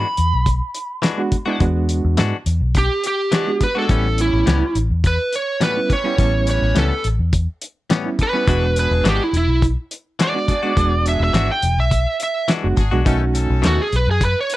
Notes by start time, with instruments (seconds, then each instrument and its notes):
Already playing: lead electric guitar B5
0.17 fingered electric bass E2, closed hi-hat
0.34 fingered electric bass B1
0.46 kick, closed hi-hat
0.75 closed hi-hat
1.02 clean electric guitar E3 G#3 D4 F#4, snare, closed hi-hat
1.18 reed electric piano G#3 B3 D4 F#4
1.32 kick, closed hi-hat
1.46 reed electric piano G#3 B3 D4 E4, clean electric guitar G#3 D4 F#4
1.60 fingered electric bass E2, reed electric piano G#3 B3 D4 F#4, kick, closed hi-hat
1.89 closed hi-hat
2.04 fingered electric bass E2
2.17 fingered electric bass G#2, clean electric guitar E3 G#3 D4 F#4, snare, closed hi-hat
2.46 fingered electric bass E2, closed hi-hat
2.61 fingered electric bass B1
2.75 lead electric guitar G4, kick, closed hi-hat
3.04 lead electric guitar G4, closed hi-hat
3.32 clean electric guitar E3 G#3 D4 F#4, snare, closed hi-hat
3.47 reed electric piano G#3 B3 D4 F#4
3.61 lead electric guitar B4, kick, closed hi-hat
3.75 reed electric piano G#3 B3 D4 F#4, clean electric guitar G#3 D4 F#4, lead electric guitar A4
3.89 fingered electric bass A1, clean electric guitar A2 G3 B3 C#4, reed electric piano G3 B3 C#4 E4, horn section C#4 G4 B4, kick, closed hi-hat
4.18 horn section C#4 G4 C#5, lead electric guitar E4, closed hi-hat
4.33 fingered electric bass A1
4.46 fingered electric bass C#2, clean electric guitar A2 G3 B3 C#4, snare, closed hi-hat
4.75 fingered electric bass A1, closed hi-hat
4.90 fingered electric bass E2
5.04 lead electric guitar B4, kick, closed hi-hat
5.33 lead electric guitar C#5, closed hi-hat
5.61 clean electric guitar A2 G3 B3 C#4, lead electric guitar B4, snare, closed hi-hat
5.76 reed electric piano G3 B3 C#4 E4
5.89 horn section C#4 G4 B4, kick, closed hi-hat
5.93 lead electric guitar C#5
6.04 reed electric piano G3 B3 C#4 E4, clean electric guitar G3 B3 C#4
6.18 fingered electric bass A1, reed electric piano G3 B3 C#4 E4, horn section C#4 G4 A4, kick, closed hi-hat
6.46 horn section C#4 G4 B4, closed hi-hat
6.50 lead electric guitar C#5
6.62 fingered electric bass A1
6.75 fingered electric bass C#2, clean electric guitar A2 G3 B3 C#4, lead electric guitar A4, snare, closed hi-hat
7.04 fingered electric bass A1, closed hi-hat
7.19 fingered electric bass E2
7.33 kick, closed hi-hat
7.62 closed hi-hat
7.90 clean electric guitar A2 G3 B3 C#4, snare, closed hi-hat
8.04 reed electric piano G3 B3 C#4 E4
8.19 horn section C#4 G4 B4, lead electric guitar B4, kick, closed hi-hat
8.33 reed electric piano G3 B3 C#4 E4, clean electric guitar G3 B3 C#4
8.47 fingered electric bass E1, clean electric guitar E3 G#3 D4 F#4, reed electric piano G#3 B3 D4 F#4, horn section D4 F#4 G#4, kick, closed hi-hat
8.76 horn section D4 F#4 G#4, lead electric guitar B4, closed hi-hat
8.91 fingered electric bass E1
9.04 fingered electric bass G#1, clean electric guitar E3 G#3 D4 F#4, snare, closed hi-hat
9.09 lead electric guitar G4
9.24 lead electric guitar E4
9.33 fingered electric bass E1, closed hi-hat
9.37 lead electric guitar E4
9.48 fingered electric bass B1
9.62 kick, closed hi-hat
9.91 closed hi-hat
10.19 clean electric guitar E3 G#3 D4 F#4, lead electric guitar D5, snare, closed hi-hat
10.34 reed electric piano G#3 B3 D4 F#4
10.47 horn section D4 F#4 G#4, kick, closed hi-hat
10.63 reed electric piano G#3 B3 D4 F#4, clean electric guitar G#3 D4 F#4
10.77 fingered electric bass E1, reed electric piano G#3 B3 D4 F#4, horn section D4 F#4 G#4, kick, closed hi-hat
11.06 horn section D4 F#4 G#4, lead electric guitar E5, closed hi-hat
11.20 fingered electric bass E1, lead electric guitar E5
11.33 fingered electric bass G#1, clean electric guitar E3 G#3 D4 F#4, snare, closed hi-hat
11.51 lead electric guitar G5
11.62 fingered electric bass E1, closed hi-hat
11.77 fingered electric bass B1, lead electric guitar E5
11.91 kick, closed hi-hat
12.20 lead electric guitar E5, closed hi-hat
12.48 clean electric guitar E3 G#3 D4 F#4, snare, closed hi-hat
12.63 fingered electric bass F#1, reed electric piano G#3 B3 D4 F#4
12.77 fingered electric bass G#1, horn section D4 F#4 G#4, kick, closed hi-hat
12.91 fingered electric bass B1, reed electric piano G#3 B3 D4 F#4, clean electric guitar G#3 D4 F#4
13.05 fingered electric bass B1, clean electric guitar B2 D#3 A3 C#4, reed electric piano A3 C#4 D#4 F#4, horn section C#4 D#4 A4, kick, closed hi-hat
13.32 horn section C#4 D#4 A4, closed hi-hat
13.50 fingered electric bass B1
13.62 fingered electric bass D#2, clean electric guitar B2 D#3 A3 C#4, snare, closed hi-hat
13.67 lead electric guitar F#4
13.82 lead electric guitar G#4
13.93 fingered electric bass B1, lead electric guitar B4, closed hi-hat
14.07 fingered electric bass F#2, lead electric guitar G#4
14.21 lead electric guitar B4, kick, closed hi-hat
14.40 lead electric guitar C#5
14.50 closed hi-hat
14.54 lead electric guitar B4